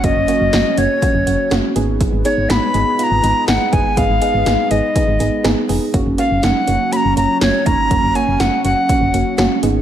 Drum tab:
HH |xxxxxxxx|xxxxxxxx|xxxxxxxo|xxxxxxxx|
SD |--o---o-|--o---o-|--o---o-|--o---o-|
BD |o---o---|o------o|o---o---|o------o|

HH |xxxxxxxx|
SD |--o---o-|
BD |o---o---|